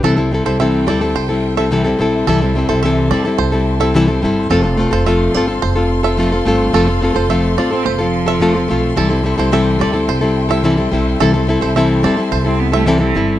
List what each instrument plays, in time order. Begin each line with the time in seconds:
0.03 upright bass C2, nylon-string guitar C3 E3 G3 C4 E4 A4, five-string banjo A4, string section A4 E5 G5 C6
0.17 nylon-string guitar G3 C4 E4 A4
0.31 nylon-string guitar G3 C4 E4 A4
0.46 upright bass C2, nylon-string guitar G3 C4 E4 A4, five-string banjo C5
0.60 nylon-string guitar C3 E3 G3 C4 E4 A4, five-string banjo E5
0.87 upright bass D2, nylon-string guitar G3 C4 E4 A4, five-string banjo D5
1.01 nylon-string guitar G3 C4 E4 A4
1.15 upright bass C2, five-string banjo C5
1.29 nylon-string guitar G3 C4 E4 A4
1.57 nylon-string guitar G3 C4 E4 A4, five-string banjo E5
1.71 nylon-string guitar C3 E3 G3 C4 E4 A4
1.85 nylon-string guitar G3 C4 E4 A4
1.99 upright bass B1, nylon-string guitar G3 C4 E4 A4
2.27 upright bass C2, nylon-string guitar C3 E3 G3 C4 E4 A4, five-string banjo A4, string section A5
2.42 nylon-string guitar G3 C4 E4 A4
2.55 nylon-string guitar G3 C4 E4 A4
2.69 upright bass C2, nylon-string guitar G3 C4 E4 A4, five-string banjo C5
2.83 nylon-string guitar C3 E3 G3 C4 E4 A4, five-string banjo E5
3.10 upright bass E2, nylon-string guitar G3 C4 E4 A4, five-string banjo D5
3.25 nylon-string guitar G3 C4 E4 A4
3.38 upright bass C2, five-string banjo C5
3.52 nylon-string guitar G3 C4 E4 A4
3.80 nylon-string guitar G3 C4 E4 A4, five-string banjo E5
3.94 nylon-string guitar C3 E3 G3 C4 E4 A4
4.08 nylon-string guitar G3 C4 E4 A4
4.22 upright bass G1, nylon-string guitar G3 C4 E4 A4
4.50 upright bass F1, nylon-string guitar F3 A3 C4 F4 A4, five-string banjo A4, string section C5 F5
4.63 nylon-string guitar C4 F4 A4
4.77 nylon-string guitar A3 C4 F4 A4
4.91 upright bass F1, nylon-string guitar C4 F4 A4, five-string banjo C5
5.06 nylon-string guitar F3 A3 C4 F4 A4, five-string banjo E5
5.34 upright bass G1, nylon-string guitar A3 C4 F4 A4, five-string banjo D5
5.48 nylon-string guitar C4 F4 A4
5.62 upright bass F1, five-string banjo C5
5.76 nylon-string guitar C4 F4 A4
6.03 nylon-string guitar C4 F4 A4, five-string banjo E5
6.17 nylon-string guitar F3 A3 C4 F4 A4
6.32 nylon-string guitar C4 F4 A4
6.45 upright bass G1, nylon-string guitar A3 C4 F4 A4
6.73 upright bass F1, nylon-string guitar F3 A3 C4 F4 A4, five-string banjo A4
6.87 nylon-string guitar C4 F4 A4
7.01 nylon-string guitar A3 C4 F4 A4
7.14 upright bass F1, nylon-string guitar C4 F4 A4, five-string banjo C5
7.29 nylon-string guitar F3 A3 C4 F4 A4, five-string banjo E5
7.57 upright bass A1, nylon-string guitar A3 C4 F4 A4, five-string banjo D5
7.71 cello C4, nylon-string guitar C4 F4 A4
7.85 upright bass F1, cello A3, five-string banjo C5
7.99 cello F3, nylon-string guitar C4 F4 A4
8.26 nylon-string guitar C4 F4 A4, five-string banjo E5
8.40 nylon-string guitar F3 A3 C4 F4 A4
8.55 nylon-string guitar C4 F4 A4
8.68 upright bass B1, nylon-string guitar A3 C4 F4 A4
8.96 upright bass C2, nylon-string guitar C3 E3 G3 C4 E4 A4, five-string banjo A4, string section E5 G5
9.09 nylon-string guitar G3 C4 E4 A4
9.23 nylon-string guitar G3 C4 E4 A4
9.38 upright bass C2, nylon-string guitar G3 C4 E4 A4, five-string banjo C5
9.52 nylon-string guitar C3 E3 G3 C4 E4 A4, five-string banjo E5
9.79 upright bass D2, nylon-string guitar G3 C4 E4 A4, five-string banjo D5
9.93 nylon-string guitar G3 C4 E4 A4
10.08 upright bass C2, five-string banjo C5
10.21 nylon-string guitar G3 C4 E4 A4
10.49 nylon-string guitar G3 C4 E4 A4, five-string banjo E5
10.63 nylon-string guitar C3 E3 G3 C4 E4 A4
10.77 nylon-string guitar G3 C4 E4 A4
10.91 upright bass B1, nylon-string guitar G3 C4 E4 A4
11.20 upright bass C2, nylon-string guitar C3 E3 G3 C4 E4 A4, five-string banjo A4, string section A5
11.34 nylon-string guitar G3 C4 E4 A4
11.47 nylon-string guitar G3 C4 E4 A4
11.61 upright bass C2, nylon-string guitar G3 C4 E4 A4, five-string banjo C5
11.75 nylon-string guitar C3 E3 G3 C4 E4 A4, five-string banjo E5
12.03 upright bass E2, nylon-string guitar G3 C4 E4 A4, five-string banjo D5
12.17 nylon-string guitar G3 C4 E4 A4
12.32 upright bass C2, five-string banjo C5
12.45 nylon-string guitar G3 C4 E4 A4, cello C4
12.59 cello B3
12.72 nylon-string guitar G3 C4 E4 A4, cello A3, five-string banjo E5
12.86 nylon-string guitar C3 E3 G3 C4 E4 A4, cello G3
13.00 cello E3, nylon-string guitar G3 C4 E4 A4
13.14 upright bass G1, nylon-string guitar G3 C4 E4 A4